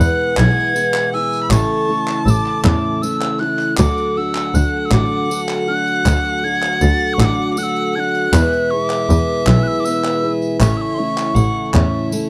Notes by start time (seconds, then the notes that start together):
Already playing: B2 E3 G#3 E4 G#4
0.00 B3 E4 G#4 B4 F#5 F#6, tambourine
0.37 B1 E3 B3 E4 G#4 B4 G#6, clap, tambourine
0.74 B3 E4 G#4 B4, tambourine
0.94 clap, tambourine
1.12 E4 G#4 B4 G#5 E6
1.33 tambourine
1.43 B5
1.50 A1 A2 C#3 E3 A3 C#4 E4 A4 A5 C#6, clap, tambourine
1.88 A3 C#4 E4 A4
2.08 clap
2.25 A1 A3 C#4 E4 A4 E6, tambourine
2.30 D6
2.46 clap
2.64 E2 A2 E3 A3 C#4 E4 A4 E6, clap
2.68 D6
3.02 A3 C#4 E4 A4 E6, tambourine
3.21 clap, tambourine
3.39 A3 C#4 E4 A4 F#6, clap
3.59 clap, tambourine
3.77 D2 D3 F#3 A3 D4 F#4 A4 F#5 D6, clap, tambourine
3.98 tambourine
4.16 D4 F#4 A4 E6
4.35 clap, tambourine
4.53 D2 A3 D4 F#4 A4 F#6, tambourine
4.85 E6
4.91 A1 D3 A3 D4 F#4 A4 D6, clap, tambourine
5.30 A3 D4 F#4 A4, tambourine
5.49 clap, tambourine
5.67 D4 F#4 A4 F#6
5.87 tambourine
6.05 D2 D3 A3 D4 F#4 A4, clap, tambourine
6.25 tambourine
6.43 D4 F#4 A4 G#6
6.62 clap, tambourine
6.81 D2 A3 D4 F#4 A4 A6, tambourine
7.14 C#6
7.19 A1 D3 A3 D4 F#4 A4 E6, clap, tambourine
7.25 D6
7.51 D6
7.57 A3 D4 F#4 A4 F#6, tambourine
7.63 E6
7.76 tambourine
7.95 D4 F#4 A4 G#6
8.00 F#6
8.15 tambourine
8.33 E2 B2 E3 G#3 B3 E4 G#4 B4 E5, clap, tambourine
8.53 tambourine
8.71 E4 G#4 B4 C#6
8.85 D6
8.90 clap, tambourine
9.09 E2 B3 E4 G#4 B4, tambourine
9.46 B1 E3 B3 E4 G#4 B4 E6, clap, tambourine
9.63 F#6
9.68 E6
9.80 D6
9.85 B3 E4 G#4 B4 E6, tambourine
10.04 clap, tambourine
10.23 E4 G#4 B4
10.42 tambourine
10.60 A1 A2 C#3 E3 A3 C#4 E4 A4 C#5 E5 C#6, clap, tambourine
10.77 E6
10.81 C#6
10.94 C#5 C6
10.98 A3 C#4 E4 C#6
11.18 clap, tambourine
11.35 A1 A3 C#4 E4 C#5 F#5, tambourine
11.74 E2 A2 E3 A3 C#4 E4 C#5 E5, clap
12.12 A3 C#4 E4 C#5, tambourine